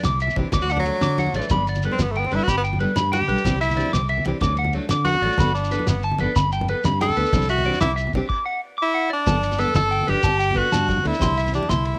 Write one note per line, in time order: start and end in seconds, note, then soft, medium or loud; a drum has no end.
0.03 0.29 C2 loud
0.03 0.19 D6 medium
0.03 snare medium
0.03 ride medium
0.03 low conga loud
0.03 shekere loud
0.11 low conga soft
0.20 0.35 E5 medium
0.20 ride medium
0.20 shekere soft
0.27 low conga medium
0.27 shekere soft
0.36 0.43 C2 medium
0.36 0.46 E3 medium
0.36 0.47 C4 medium
0.36 0.47 D4 medium
0.36 0.47 G4 medium
0.36 kick medium
0.36 snare soft
0.36 ride medium
0.36 high conga medium
0.45 low conga soft
0.52 0.90 D2 loud
0.52 0.63 F#3 medium
0.52 0.63 A3 medium
0.52 0.63 D4 medium
0.52 0.63 A4 medium
0.52 0.67 D6 medium
0.52 kick medium
0.52 ride medium
0.52 low conga medium
0.52 shekere medium
0.61 0.73 F#4 medium
0.61 shekere soft
0.69 0.79 D4 medium
0.69 0.83 F#5 medium
0.69 ride medium
0.69 shekere soft
0.77 1.56 F#3 medium
0.77 high conga medium
0.77 low conga medium
0.85 0.95 F#3 medium
0.85 0.95 A3 medium
0.85 0.96 D4 medium
0.85 0.96 A4 medium
0.85 ride soft
0.85 shekere soft
1.01 1.26 D3 loud
1.01 1.16 D6 medium
1.01 snare loud
1.01 ride medium
1.01 low conga loud
1.01 shekere medium
1.11 low conga soft
1.18 1.32 F#5 medium
1.18 ride medium
1.18 high conga medium
1.18 low conga soft
1.18 shekere soft
1.27 low conga medium
1.34 1.40 A1 medium
1.34 1.44 F#3 medium
1.34 1.44 A3 medium
1.34 1.45 D4 medium
1.34 1.45 A4 medium
1.34 1.49 D5 medium
1.34 ride medium
1.34 shekere soft
1.42 shekere soft
1.50 1.87 G1 loud
1.50 1.61 G3 medium
1.50 1.61 B3 medium
1.50 1.61 D4 medium
1.50 1.65 B5 medium
1.50 muted steel-string acoustic guitar stroke medium
1.50 kick medium
1.50 ride medium
1.50 high conga loud
1.50 low conga medium
1.50 shekere medium
1.67 1.82 D5 medium
1.67 ride medium
1.67 shekere soft
1.75 low conga medium
1.75 shekere soft
1.82 1.93 G3 medium
1.82 1.93 B3 medium
1.82 1.94 D4 medium
1.82 1.94 A4 medium
1.82 1.98 B4 medium
1.82 ride soft
1.82 low conga soft
1.82 shekere soft
1.91 2.04 C4 medium
1.91 high conga medium
1.99 2.24 G1 loud
1.99 2.13 B3 medium
1.99 snare medium
1.99 ride medium
1.99 low conga loud
1.99 shekere medium
2.12 2.21 A3 medium
2.12 ride soft
2.17 2.28 B3 medium
2.17 2.30 G5 medium
2.24 2.37 C4 medium
2.24 low conga medium
2.31 2.38 G1 medium
2.31 2.41 G3 medium
2.31 2.41 B3 medium
2.31 2.41 D4 medium
2.31 2.42 A4 medium
2.31 2.46 B4 medium
2.31 snare soft
2.31 ride soft
2.35 2.45 E4 loud
2.40 2.51 F#4 medium
2.40 low conga soft
2.48 2.84 G1 medium
2.48 2.57 G4 medium
2.48 2.62 B5 medium
2.48 kick medium
2.48 ride medium
2.48 low conga medium
2.48 shekere medium
2.57 2.62 B3 medium
2.64 2.78 G5 medium
2.64 ride soft
2.64 shekere soft
2.73 high conga medium
2.73 low conga medium
2.80 2.90 G3 medium
2.80 2.90 B3 medium
2.80 2.90 D4 medium
2.80 2.91 A4 medium
2.80 2.94 B4 medium
2.80 ride medium
2.96 3.21 G2 loud
2.96 3.10 B5 medium
2.96 snare medium
2.96 ride medium
2.96 low conga medium
2.96 shekere medium
3.12 3.58 G4 medium
3.12 3.26 G5 medium
3.12 ride medium
3.12 high conga medium
3.12 shekere soft
3.22 low conga medium
3.27 3.35 B1 medium
3.27 3.38 G3 medium
3.27 3.39 D4 medium
3.27 3.39 A4 medium
3.27 3.42 B4 medium
3.27 muted steel-string acoustic guitar stroke medium
3.27 ride medium
3.38 shekere soft
3.44 3.82 C2 loud
3.44 3.54 E3 medium
3.44 3.55 C4 medium
3.44 3.54 D4 medium
3.44 3.55 G4 medium
3.44 kick medium
3.44 ride medium
3.44 high conga medium
3.44 low conga medium
3.44 shekere medium
3.61 3.91 E4 medium
3.61 3.75 E5 medium
3.61 ride medium
3.61 shekere soft
3.69 low conga medium
3.69 shekere soft
3.75 3.86 E3 medium
3.75 3.87 C4 medium
3.75 3.87 D4 medium
3.75 3.88 G4 medium
3.75 3.91 D5 medium
3.75 ride medium
3.75 low conga soft
3.79 shekere soft
3.86 high conga medium
3.93 4.18 C2 loud
3.93 4.02 C4 medium
3.93 4.07 D6 loud
3.93 snare medium
3.93 ride medium
3.93 low conga loud
3.93 shekere loud
4.09 4.23 E5 medium
4.09 ride medium
4.18 low conga medium
4.25 4.32 C2 medium
4.25 4.36 E3 medium
4.25 4.36 C4 medium
4.25 4.36 D4 medium
4.25 4.36 G4 medium
4.25 ride medium
4.25 high conga medium
4.34 low conga soft
4.41 4.79 D2 loud
4.41 4.52 F#3 medium
4.41 4.52 D4 medium
4.41 4.53 A4 loud
4.41 4.56 D6 medium
4.41 muted steel-string acoustic guitar stroke medium
4.41 kick medium
4.41 ride medium
4.41 low conga loud
4.41 shekere loud
4.57 4.72 F#5 medium
4.57 ride medium
4.64 high conga medium
4.64 low conga medium
4.73 4.84 F#3 medium
4.73 4.84 A3 medium
4.73 4.85 D4 medium
4.73 4.85 A4 medium
4.73 ride soft
4.89 5.15 D3 loud
4.89 5.05 D6 medium
4.89 snare medium
4.89 ride medium
4.89 low conga loud
4.89 shekere loud
5.05 5.51 F#4 loud
5.05 5.21 F#5 medium
5.05 ride soft
5.05 high conga loud
5.05 shekere soft
5.14 low conga medium
5.22 5.29 A1 medium
5.22 5.33 F#3 medium
5.22 5.34 A3 medium
5.22 5.34 D4 medium
5.22 5.34 A4 medium
5.22 5.37 D5 medium
5.22 ride medium
5.32 shekere soft
5.38 5.76 G1 loud
5.38 5.49 B3 medium
5.38 5.49 D4 medium
5.38 5.50 A4 medium
5.38 5.54 B5 medium
5.38 kick medium
5.38 ride medium
5.38 high conga loud
5.38 low conga loud
5.38 shekere loud
5.55 5.85 D4 medium
5.55 ride medium
5.55 shekere soft
5.64 shekere soft
5.71 5.81 B3 medium
5.71 5.82 D4 medium
5.71 5.82 A4 medium
5.71 5.86 B4 medium
5.71 ride medium
5.71 low conga soft
5.71 shekere soft
5.79 high conga medium
5.87 6.12 G1 loud
5.87 6.04 B3 medium
5.87 snare medium
5.87 ride medium
5.87 low conga loud
5.87 shekere loud
6.03 6.18 A5 medium
6.03 ride medium
6.11 low conga medium
6.18 6.26 G1 medium
6.18 6.30 B3 medium
6.18 6.31 D4 medium
6.18 6.34 B4 medium
6.18 ride medium
6.18 high conga loud
6.23 6.31 A4 medium
6.28 low conga soft
6.36 6.73 G1 loud
6.36 6.50 B5 loud
6.36 kick medium
6.36 ride medium
6.36 low conga loud
6.36 shekere loud
6.52 6.67 G5 medium
6.52 ride medium
6.52 shekere soft
6.61 high conga medium
6.61 low conga medium
6.68 6.79 B3 medium
6.68 6.79 A4 medium
6.68 6.83 B4 medium
6.68 ride medium
6.84 7.10 G2 loud
6.84 6.99 B5 medium
6.84 snare loud
6.84 ride medium
6.84 low conga loud
6.84 shekere medium
7.01 7.47 A4 loud
7.01 7.15 G5 medium
7.01 ride medium
7.01 high conga loud
7.01 shekere soft
7.09 low conga medium
7.17 7.23 D2 medium
7.17 7.27 B3 medium
7.17 7.28 D4 medium
7.17 7.28 A4 medium
7.17 7.31 B4 medium
7.17 ride medium
7.26 shekere soft
7.33 7.70 C2 loud
7.33 7.43 E3 medium
7.33 7.43 C4 medium
7.33 7.44 D4 medium
7.33 7.44 G4 medium
7.33 kick medium
7.33 ride medium
7.33 high conga loud
7.33 low conga loud
7.33 shekere medium
7.42 shekere soft
7.49 7.80 F#4 loud
7.49 7.63 E5 medium
7.49 ride medium
7.49 shekere soft
7.58 low conga medium
7.64 7.75 E3 medium
7.64 7.75 C4 medium
7.64 7.76 D4 medium
7.64 7.76 G4 medium
7.64 7.80 D5 medium
7.64 ride medium
7.64 low conga soft
7.74 high conga medium
7.74 shekere soft
7.80 8.06 C2 loud
7.80 7.91 E4 loud
7.80 7.95 D6 medium
7.80 snare loud
7.80 ride medium
7.80 low conga loud
7.80 shekere medium
7.96 8.11 E5 medium
7.96 ride soft
7.96 low conga soft
7.96 shekere soft
8.07 low conga medium
8.13 8.20 C2 medium
8.13 8.25 C4 medium
8.13 8.25 D4 medium
8.13 8.25 G4 medium
8.13 kick medium
8.13 snare soft
8.13 ride soft
8.13 high conga loud
8.13 low conga soft
8.29 8.43 D6 loud
8.29 kick medium
8.29 crash medium
8.45 8.60 F#5 medium
8.78 8.92 D6 medium
8.83 9.11 E4 loud
8.94 9.09 F#5 medium
9.10 9.61 D4 loud
9.10 9.24 D5 medium
9.27 9.64 G1 loud
9.27 9.37 B3 medium
9.27 9.38 D4 medium
9.27 9.38 A4 medium
9.27 9.41 A5 medium
9.27 kick loud
9.27 ride medium
9.27 high conga loud
9.27 low conga loud
9.27 shekere medium
9.43 ride medium
9.43 shekere soft
9.52 low conga medium
9.52 shekere soft
9.58 9.69 B3 medium
9.58 9.70 D4 medium
9.58 9.76 A4 loud
9.58 9.70 A4 medium
9.58 9.73 B4 medium
9.58 ride medium
9.58 low conga soft
9.58 shekere soft
9.68 high conga medium
9.74 10.00 G1 loud
9.74 10.11 A4 loud
9.74 9.90 A5 medium
9.74 snare loud
9.74 ride medium
9.74 low conga loud
9.74 shekere loud
9.91 10.05 G5 medium
9.91 ride medium
10.01 low conga medium
10.07 10.15 G1 medium
10.07 10.19 D4 medium
10.07 10.59 G4 loud
10.07 10.19 A4 medium
10.07 10.22 B4 medium
10.07 snare soft
10.07 ride soft
10.07 high conga medium
10.17 low conga soft
10.23 10.61 G1 loud
10.23 10.38 A5 loud
10.23 kick medium
10.23 ride medium
10.23 low conga medium
10.23 shekere medium
10.39 10.54 G5 medium
10.39 ride medium
10.39 shekere soft
10.51 10.65 B3 medium
10.51 high conga medium
10.51 low conga medium
10.56 10.66 D4 medium
10.56 11.08 F#4 loud
10.56 10.67 A4 medium
10.56 10.70 B4 medium
10.56 kick medium
10.56 ride medium
10.72 10.98 G2 loud
10.72 10.86 A5 medium
10.72 snare loud
10.72 ride medium
10.72 low conga loud
10.72 shekere loud
10.89 kick medium
10.89 ride medium
10.89 high conga medium
10.89 shekere soft
10.97 low conga medium
11.03 11.11 D2 medium
11.03 11.14 B3 medium
11.03 11.15 D4 medium
11.03 11.55 E4 loud
11.03 11.15 A4 medium
11.03 ride medium
11.14 shekere soft
11.19 11.58 C2 loud
11.19 11.30 E3 medium
11.19 11.30 C4 medium
11.19 11.31 D4 medium
11.19 11.31 G4 medium
11.19 11.35 C6 medium
11.19 kick loud
11.19 ride medium
11.19 high conga medium
11.19 low conga medium
11.19 shekere medium
11.37 11.51 E5 medium
11.37 ride medium
11.37 shekere soft
11.47 low conga medium
11.47 shekere soft
11.52 11.63 E3 medium
11.52 11.64 D4 medium
11.52 11.71 D4 medium
11.52 11.64 G4 medium
11.52 muted steel-string acoustic guitar stroke medium
11.52 ride medium
11.52 low conga soft
11.52 shekere soft
11.63 high conga medium
11.69 11.94 C2 loud
11.69 11.99 E4 medium
11.69 11.84 C6 loud
11.69 snare loud
11.69 ride medium
11.69 low conga loud
11.69 shekere loud
11.85 ride medium
11.95 low conga medium